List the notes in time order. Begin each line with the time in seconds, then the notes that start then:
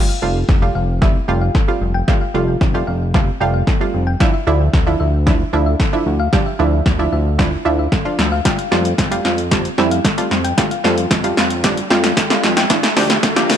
Already playing: G3 A3 F4
0.09 F5
0.22 F1 G3 A3 F4 A4
0.49 F1, kick, snare
0.62 G3 A3 F4 G5
0.75 F1 F5
1.02 G3 A3 C4 E4, kick, snare
1.28 F1 G3 A3 F4 G5
1.41 F5
1.55 A4, kick, snare
1.68 G3 A3 C4 F4
1.81 F1 G3
1.94 G5
2.08 G3 A3 F4 G5, kick, snare
2.21 F5
2.34 F1 G3 A3 F4 A4
2.61 F1, kick, snare
2.74 G3 A3 F4 G5
2.87 F1 F5
3.14 G3 A3 C4 F4, kick, snare
3.40 F1 G3 A3 F4 G5
3.54 F5
3.67 A4, kick, snare
3.80 G3 A3 C4 F4
3.94 F1 G3
4.07 G5
4.20 F3 D4 E4 F5, kick, snare
4.34 E5
4.47 D2 F3 D4 E4 A4
4.74 D2, kick, snare
4.87 F3 D4 E4 F5
5.00 D2 E5
5.26 F3 D4 E4, kick, snare
5.53 D2 F3 D4 E4 F5
5.66 E5
5.80 A4, kick, snare
5.93 F3 D4 E4
6.06 D2 F3
6.20 F5
6.33 F3 D4 G4 F5, kick, snare
6.46 E5
6.59 D2 F3 D4 E4 A4
6.86 D2, kick, snare
6.99 F3 D4 E4 F5
7.12 D2 E5
7.39 F3 D4 E4, kick, snare
7.65 D2 F3 D4 E4 F5
7.79 E5
7.92 A4, kick, snare
8.05 F3 D4 F4
8.19 D2 F3, snare
8.32 F5
8.45 G3 A3 F4 G5, kick, snare, closed hi-hat, riser
8.58 F5, closed hi-hat
8.71 F2 G3 A3 F4 A4, snare
8.85 closed hi-hat
8.98 F2, kick, snare, closed hi-hat
9.11 G3 A3 F4 G5, closed hi-hat
9.25 F2 F5, snare
9.38 closed hi-hat
9.51 G3 A3 C4 F4, kick, snare, closed hi-hat
9.65 closed hi-hat
9.78 F2 G3 A3 E4 G5, snare
9.91 F5, closed hi-hat
10.05 A4, kick, snare, closed hi-hat
10.18 G3 A3 C4 F4, closed hi-hat
10.31 F2 G3, snare
10.44 G5, closed hi-hat
10.58 G3 A3 F4 G5, kick, snare, closed hi-hat
10.71 F5, closed hi-hat
10.84 F2 G3 A3 F4 A4, snare
10.98 closed hi-hat
11.11 F2, kick, snare, closed hi-hat
11.24 G3 A3 F4 G5, closed hi-hat
11.37 F2 F5, snare
11.50 closed hi-hat
11.64 G3 A3 C4 D4, kick, snare, closed hi-hat
11.77 closed hi-hat
11.90 F2 G3 A3 F4 G5, snare
12.04 F5, snare, closed hi-hat
12.17 A4, kick, snare, closed hi-hat
12.30 G3 A3 C4 F4, snare, closed hi-hat
12.43 F2 G3, snare
12.57 G5, snare, closed hi-hat
12.70 F3 D4 E4 F5, kick, snare, closed hi-hat
12.83 E5, snare, closed hi-hat
12.96 D2 F3 D4 G4 A4, snare, open hi-hat
13.10 snare, closed hi-hat
13.23 D2, kick, snare, closed hi-hat
13.36 F3 D4 G4 F5, snare, closed hi-hat
13.50 D2 E5, snare, open hi-hat